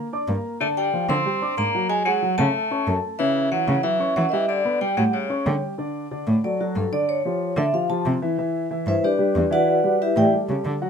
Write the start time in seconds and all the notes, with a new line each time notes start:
0.13 D4 D5 D6
0.28 G2 A#3 A#4 A#5
0.60 D3 A3 D4 D5 A5
0.77 G3 G5
0.93 F3 F4 F5
1.09 D3 C4 C6
1.25 G3 G4 G5
1.42 D4 D5 D6
1.57 G#2 A#3 A#5
1.75 F#3 F#4 F#5
1.89 G#3 G#5
2.05 F#3 G#3 G#4 F#5 G#5
2.22 F#3 F#4 F#5
2.38 C#3 A3 A4 A5
2.71 C#4 C#5 C#6
2.87 F#2 A3 A4 A5
3.19 C#3 E3 C#4 C#5 E5
3.51 E3 F#3 E4 E5 F#5
3.68 C#3
3.83 E3 F#3 F#4 E5 F#5
4.00 C#4 C#5 C#6
4.16 E3 F#3 F#5
4.29 D#3 E3 G3 G4 D#5 E5
4.33 G5
4.48 D3 D5
4.65 B3 B4 B5
4.80 G3 G4 G5
4.97 A2 F#3 G3 G4 F#5 G5
5.13 C#3 C#5
5.29 C#4 C#5 C#6
5.46 D3 G3 G4 G5
5.78 D3 D4 D5
6.11 D3 D4 D5
6.27 A2
6.44 F#3 F#4 A4 D5
6.60 F#3 F#4 A4
6.76 G2 A4
6.92 D3 D4 D5
7.09 C#5
7.25 F3 F4 G4
7.57 D3 D4 D5 E5
7.73 F3 F4 G4 F5
7.90 F3 F4 G4 A5
8.06 C3
8.22 E3 E4 E5
8.38 E3 E4 E5
8.71 E3 E4 E5
8.87 G2 E4 B4 C5 E5
9.03 G3 D4 G4 B4 D5
9.19 G3 G4 B4
9.35 E2
9.50 E3 E4 F#4 B4 D5 E5 F#5
9.84 G3 G4 B4
10.02 E4 G4 B4 E5
10.16 A2 E3 E4 G4 D5 E5 G5
10.33 G3 G4 A4
10.49 C#3 G3 G4 A4
10.65 D3
10.82 F#3 F#4 F#5